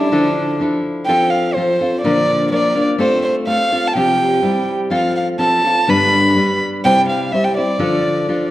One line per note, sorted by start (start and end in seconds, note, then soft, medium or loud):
0.00 0.12 G3 soft
0.00 0.12 C#4 soft
0.00 0.60 D4 medium
0.00 0.11 E4 soft
0.00 0.11 A4 soft
0.12 0.60 D3 medium
0.12 0.59 F3 medium
0.12 0.59 D4 medium
0.12 0.60 E4 medium
0.12 0.60 A4 medium
0.60 1.08 F3 medium
0.60 1.08 D4 medium
0.60 1.08 E4 medium
0.60 1.08 A4 medium
1.06 1.56 F3 medium
1.06 1.56 C4 medium
1.06 1.57 F4 medium
1.06 1.56 A4 medium
1.06 1.32 G5 medium
1.30 1.55 F5 medium
1.54 1.80 F3 medium
1.54 1.80 C4 soft
1.54 1.80 F4 medium
1.54 2.01 C5 medium
1.58 1.79 A4 soft
1.81 2.04 C4 soft
1.81 2.04 F4 soft
1.81 2.04 A4 soft
2.02 2.51 A#2 medium
2.02 2.51 D3 medium
2.02 2.51 F3 medium
2.02 2.51 A#3 medium
2.02 2.51 D4 medium
2.02 2.52 A#4 medium
2.02 2.47 D5 medium
2.52 2.75 F3 soft
2.52 2.75 A#3 soft
2.52 2.74 D4 medium
2.52 2.74 A#4 soft
2.52 2.85 D5 medium
2.75 2.98 F3 soft
2.75 2.99 A#3 soft
2.75 2.99 D4 soft
2.75 2.99 A#4 soft
2.98 3.46 A3 medium
2.98 3.47 C4 medium
2.98 3.47 F4 medium
2.98 3.47 A4 medium
2.98 3.22 C5 medium
3.24 3.34 C5 medium
3.47 3.71 A3 soft
3.47 3.71 C4 medium
3.47 3.71 F4 soft
3.47 3.71 A4 medium
3.47 3.89 F5 loud
3.72 3.95 C4 soft
3.72 3.95 F4 soft
3.72 3.95 A4 soft
3.88 3.95 A5 medium
3.94 4.43 C3 medium
3.94 4.42 F3 medium
3.94 4.41 C4 medium
3.94 4.43 F4 medium
3.94 4.42 G4 medium
3.94 4.67 G5 loud
4.42 4.90 G3 soft
4.42 4.90 C4 soft
4.42 4.91 E4 soft
4.42 4.91 G4 soft
4.90 5.37 F3 medium
4.90 5.37 C4 medium
4.90 5.38 F4 medium
4.90 5.39 A4 medium
4.90 5.14 F5 medium
5.17 5.27 F5 medium
5.39 5.63 F3 soft
5.39 5.63 C4 medium
5.39 5.63 F4 medium
5.39 5.63 A4 medium
5.39 5.91 A5 loud
5.64 5.88 C4 soft
5.64 5.88 F4 soft
5.64 5.88 A4 soft
5.87 6.36 G2 medium
5.87 6.35 D3 medium
5.87 6.33 G3 medium
5.87 6.35 B3 medium
5.87 6.36 D4 medium
5.87 6.36 B4 medium
5.87 6.61 B5 loud
6.35 6.83 G3 soft
6.35 6.84 B3 medium
6.35 6.84 D4 medium
6.35 6.84 B4 medium
6.85 7.32 C3 medium
6.85 7.32 G3 medium
6.85 7.31 C4 medium
6.85 7.32 E4 medium
6.85 7.33 C5 medium
6.85 7.06 G5 loud
7.09 7.34 F5 medium
7.32 7.56 G3 soft
7.32 7.56 C4 soft
7.32 7.57 E4 soft
7.32 7.56 C5 medium
7.32 7.46 E5 loud
7.44 7.56 G5 medium
7.57 7.80 C4 soft
7.57 7.79 E4 soft
7.57 7.80 C5 soft
7.57 8.50 D5 medium
7.79 8.28 D3 medium
7.79 8.28 F3 medium
7.79 8.28 D4 medium
7.79 8.29 F4 medium
7.79 8.29 A4 medium
8.28 8.51 F3 medium
8.28 8.51 D4 medium
8.28 8.51 F4 medium
8.28 8.51 A4 soft